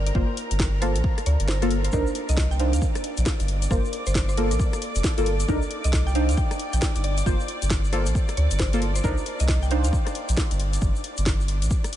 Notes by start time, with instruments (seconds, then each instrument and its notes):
Already playing: sub bass G1, string machine A#4 A#5
0.06 synth pluck D5, closed hi-hat
0.15 sub bass G1, synth stab A#3 F4 C5, kick
0.37 open hi-hat
0.51 sub bass G1, closed hi-hat
0.59 kick, snare
0.82 synth stab A#3 F4 A4, synth pluck C5, cross-stick, open hi-hat
0.95 sub bass A#1, closed hi-hat
1.04 kick
1.18 cross-stick, closed hi-hat
1.26 sub bass D2, synth pluck D5, open hi-hat
1.40 sub bass G1, closed hi-hat
1.48 synth pluck C5, snare
1.62 synth stab A#3 F4 A4, synth pluck C5, cross-stick, closed hi-hat
1.71 open hi-hat
1.84 synth pluck C5, closed hi-hat
1.92 sub bass C2, synth stab D4 D#4 A#4, synth pluck C5, string machine D5 D6, kick, shaker
2.07 shaker
2.15 open hi-hat
2.29 sub bass C2, synth pluck D#5, closed hi-hat, shaker
2.37 synth pluck D#5, kick, snare, shaker
2.51 synth pluck G5, shaker
2.60 synth stab D4 D#4 C5, synth pluck F5, open hi-hat
2.73 sub bass D#2, synth pluck F5, closed hi-hat, shaker
2.82 kick, shaker
2.95 cross-stick, closed hi-hat, shaker
3.04 open hi-hat
3.17 sub bass A#1, closed hi-hat, shaker
3.26 kick, snare, shaker
3.40 sub bass G1, closed hi-hat, shaker
3.48 open hi-hat
3.62 closed hi-hat, shaker
3.71 sub bass G1, synth stab A#3 F4 C5, synth pluck A#4, kick, shaker
3.85 shaker
3.93 open hi-hat
4.06 sub bass G1, synth pluck C5, closed hi-hat, shaker
4.15 kick, snare, shaker
4.29 synth pluck C5, shaker
4.37 synth stab A#3 F4 A4, synth pluck A#4, open hi-hat
4.51 sub bass A#1, synth pluck A#4, closed hi-hat, shaker
4.60 kick, shaker
4.73 cross-stick, closed hi-hat, shaker
4.82 open hi-hat
4.95 sub bass F1, closed hi-hat, shaker
5.04 kick, snare, shaker
5.18 sub bass G1, synth stab A#3 F4 A4, closed hi-hat, shaker
5.26 open hi-hat
5.40 closed hi-hat, shaker
5.48 sub bass C2, synth stab D4 D#4 A#4, kick, shaker
5.62 shaker
5.71 open hi-hat
5.84 sub bass C2, synth pluck D#5, closed hi-hat, shaker
5.93 synth pluck D#5, kick, snare, shaker
6.07 synth pluck G5, shaker
6.15 synth stab D4 D#4 C5, synth pluck F5, open hi-hat
6.29 sub bass D#2, synth pluck F5, closed hi-hat, shaker
6.37 synth pluck G5, kick, shaker
6.51 cross-stick, closed hi-hat, shaker
6.59 open hi-hat
6.73 sub bass A#1, synth pluck G5, closed hi-hat, shaker
6.82 kick, snare, shaker
6.95 sub bass G1, closed hi-hat, shaker
7.04 synth pluck D5, open hi-hat
7.18 synth pluck D5, closed hi-hat, shaker
7.26 sub bass G1, synth stab A#3 F4 C5, kick, shaker
7.40 shaker
7.48 open hi-hat
7.62 sub bass G1, closed hi-hat, shaker
7.70 kick, snare, shaker
7.85 shaker
7.93 synth stab A#3 F4 A4, synth pluck C5, cross-stick, open hi-hat
8.06 sub bass A#1, closed hi-hat, shaker
8.15 kick, shaker
8.28 cross-stick, closed hi-hat, shaker
8.37 sub bass D2, synth pluck D5, open hi-hat
8.51 sub bass G1, closed hi-hat, shaker
8.59 synth pluck C5, kick, snare, shaker
8.73 synth stab A#3 F4 A4, synth pluck C5, closed hi-hat, shaker
8.82 open hi-hat
8.96 synth pluck C5, closed hi-hat, shaker
9.04 sub bass C2, synth stab D4 D#4 A#4, synth pluck C5, kick, shaker
9.18 shaker
9.26 open hi-hat
9.40 sub bass C2, synth pluck D#5, closed hi-hat, shaker
9.48 synth pluck D#5, kick, snare, shaker
9.63 synth pluck G5, shaker
9.71 synth stab D4 D#4 C5, synth pluck F5, open hi-hat
9.84 sub bass D#2, synth pluck F5, closed hi-hat, shaker
9.93 kick, shaker
10.07 cross-stick, closed hi-hat, shaker
10.15 open hi-hat
10.29 sub bass A#1, closed hi-hat, shaker
10.37 kick, snare, shaker
10.51 sub bass G1, closed hi-hat, shaker
10.60 open hi-hat
10.73 closed hi-hat, shaker
10.82 sub bass G1, kick, shaker
10.96 shaker
11.04 open hi-hat
11.17 sub bass G1, closed hi-hat, shaker
11.26 kick, snare, shaker
11.40 shaker
11.48 open hi-hat
11.62 sub bass A#1, closed hi-hat, shaker
11.70 kick, shaker
11.84 cross-stick, closed hi-hat, shaker
11.93 open hi-hat